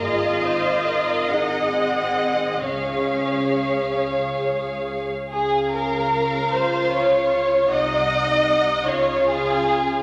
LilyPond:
<<
  \new Staff \with { instrumentName = "Violin section" } { \time 6/8 \key des \major \tempo 4. = 49 f''4. ges''4. | f''2~ f''8. r16 | f''2. | ges''4. f''4. | }
  \new Staff \with { instrumentName = "Violin section" } { \time 6/8 \key des \major ees''2. | des''2~ des''8. r16 | aes'8 bes'4 c''8 des''4 | ees''4. des''8 aes'4 | }
  \new Staff \with { instrumentName = "Viola section" } { \time 6/8 \key des \major aes'8 c''8 bes'8 aes'4. | aes'2~ aes'8. r16 | r4. f'4. | ees'4. f'4. | }
  \new Staff \with { instrumentName = "Cello section" } { \time 6/8 \key des \major f'4. ees'8 c'4 | des'4. r4. | des2. | c4. des4. | }
  \new Staff \with { instrumentName = "Double bass section" } { \clef bass \time 6/8 \key des \major aes,,4. aes,,4. | des,2~ des,8. r16 | des,2. | c,4. des,4. | }
>>